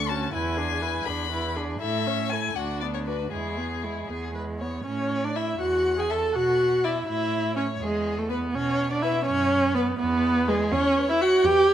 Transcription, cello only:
0, 0, Header, 1, 2, 480
1, 0, Start_track
1, 0, Key_signature, 3, "major"
1, 0, Tempo, 495050
1, 323, Time_signature, 6, 3, 24, 8
1, 2726, Tempo, 505051
1, 6086, Tempo, 485830
1, 11411, End_track
2, 0, Start_track
2, 0, Title_t, "Cello"
2, 0, Program_c, 0, 42
2, 0, Note_on_c, 0, 38, 52
2, 236, Note_off_c, 0, 38, 0
2, 314, Note_on_c, 0, 40, 58
2, 944, Note_off_c, 0, 40, 0
2, 1022, Note_on_c, 0, 40, 51
2, 1666, Note_off_c, 0, 40, 0
2, 1751, Note_on_c, 0, 45, 55
2, 2396, Note_off_c, 0, 45, 0
2, 2481, Note_on_c, 0, 38, 42
2, 3122, Note_off_c, 0, 38, 0
2, 3207, Note_on_c, 0, 40, 43
2, 3852, Note_off_c, 0, 40, 0
2, 3941, Note_on_c, 0, 40, 38
2, 4585, Note_off_c, 0, 40, 0
2, 4664, Note_on_c, 0, 45, 45
2, 5258, Note_off_c, 0, 45, 0
2, 5370, Note_on_c, 0, 40, 46
2, 5964, Note_off_c, 0, 40, 0
2, 6081, Note_on_c, 0, 47, 48
2, 6687, Note_off_c, 0, 47, 0
2, 6800, Note_on_c, 0, 45, 48
2, 7409, Note_off_c, 0, 45, 0
2, 7523, Note_on_c, 0, 40, 49
2, 8134, Note_off_c, 0, 40, 0
2, 8255, Note_on_c, 0, 47, 57
2, 8857, Note_off_c, 0, 47, 0
2, 8978, Note_on_c, 0, 42, 59
2, 9578, Note_off_c, 0, 42, 0
2, 9688, Note_on_c, 0, 40, 57
2, 10292, Note_off_c, 0, 40, 0
2, 10410, Note_on_c, 0, 40, 73
2, 11015, Note_off_c, 0, 40, 0
2, 11123, Note_on_c, 0, 40, 60
2, 11411, Note_off_c, 0, 40, 0
2, 11411, End_track
0, 0, End_of_file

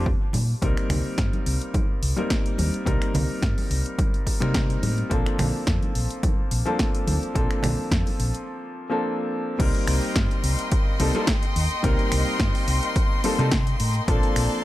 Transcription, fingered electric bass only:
0, 0, Header, 1, 3, 480
1, 0, Start_track
1, 0, Tempo, 560748
1, 534, Time_signature, 4, 2, 24, 8
1, 12532, End_track
2, 0, Start_track
2, 0, Title_t, "Fingered electric bass"
2, 0, Program_c, 0, 33
2, 0, Note_on_c, 0, 41, 89
2, 110, Note_off_c, 0, 41, 0
2, 291, Note_on_c, 0, 46, 92
2, 455, Note_off_c, 0, 46, 0
2, 531, Note_on_c, 0, 36, 91
2, 617, Note_off_c, 0, 36, 0
2, 768, Note_on_c, 0, 36, 98
2, 855, Note_off_c, 0, 36, 0
2, 1011, Note_on_c, 0, 43, 86
2, 1097, Note_off_c, 0, 43, 0
2, 1252, Note_on_c, 0, 36, 95
2, 1337, Note_off_c, 0, 36, 0
2, 1732, Note_on_c, 0, 36, 80
2, 1817, Note_off_c, 0, 36, 0
2, 2212, Note_on_c, 0, 39, 72
2, 2297, Note_off_c, 0, 39, 0
2, 2450, Note_on_c, 0, 36, 94
2, 2536, Note_off_c, 0, 36, 0
2, 2693, Note_on_c, 0, 36, 100
2, 2778, Note_off_c, 0, 36, 0
2, 2931, Note_on_c, 0, 43, 87
2, 3017, Note_off_c, 0, 43, 0
2, 3171, Note_on_c, 0, 36, 93
2, 3257, Note_off_c, 0, 36, 0
2, 3781, Note_on_c, 0, 48, 98
2, 4071, Note_off_c, 0, 48, 0
2, 4132, Note_on_c, 0, 45, 91
2, 4296, Note_off_c, 0, 45, 0
2, 4373, Note_on_c, 0, 34, 101
2, 4458, Note_off_c, 0, 34, 0
2, 4615, Note_on_c, 0, 34, 101
2, 4698, Note_off_c, 0, 34, 0
2, 4855, Note_on_c, 0, 41, 92
2, 4939, Note_off_c, 0, 41, 0
2, 5095, Note_on_c, 0, 34, 96
2, 5179, Note_off_c, 0, 34, 0
2, 5577, Note_on_c, 0, 34, 83
2, 5660, Note_off_c, 0, 34, 0
2, 6057, Note_on_c, 0, 38, 76
2, 6140, Note_off_c, 0, 38, 0
2, 6295, Note_on_c, 0, 34, 98
2, 6379, Note_off_c, 0, 34, 0
2, 6535, Note_on_c, 0, 34, 100
2, 6618, Note_off_c, 0, 34, 0
2, 6773, Note_on_c, 0, 41, 93
2, 6858, Note_off_c, 0, 41, 0
2, 7014, Note_on_c, 0, 34, 98
2, 7098, Note_off_c, 0, 34, 0
2, 8212, Note_on_c, 0, 36, 101
2, 8297, Note_off_c, 0, 36, 0
2, 8452, Note_on_c, 0, 36, 101
2, 8537, Note_off_c, 0, 36, 0
2, 8694, Note_on_c, 0, 43, 90
2, 8778, Note_off_c, 0, 43, 0
2, 8933, Note_on_c, 0, 36, 101
2, 9018, Note_off_c, 0, 36, 0
2, 9414, Note_on_c, 0, 36, 88
2, 9498, Note_off_c, 0, 36, 0
2, 9895, Note_on_c, 0, 39, 80
2, 9979, Note_off_c, 0, 39, 0
2, 10132, Note_on_c, 0, 36, 99
2, 10217, Note_off_c, 0, 36, 0
2, 10377, Note_on_c, 0, 36, 103
2, 10459, Note_off_c, 0, 36, 0
2, 10612, Note_on_c, 0, 43, 92
2, 10697, Note_off_c, 0, 43, 0
2, 10852, Note_on_c, 0, 36, 100
2, 10937, Note_off_c, 0, 36, 0
2, 11461, Note_on_c, 0, 48, 108
2, 11751, Note_off_c, 0, 48, 0
2, 11813, Note_on_c, 0, 45, 93
2, 11976, Note_off_c, 0, 45, 0
2, 12051, Note_on_c, 0, 34, 102
2, 12137, Note_off_c, 0, 34, 0
2, 12291, Note_on_c, 0, 34, 105
2, 12376, Note_off_c, 0, 34, 0
2, 12532, End_track
3, 0, Start_track
3, 0, Title_t, "Muted fingered electric bass strokes"
3, 6666, Note_on_c, 9, 29, 42
3, 6751, Note_off_c, 9, 29, 0
3, 12532, End_track
0, 0, End_of_file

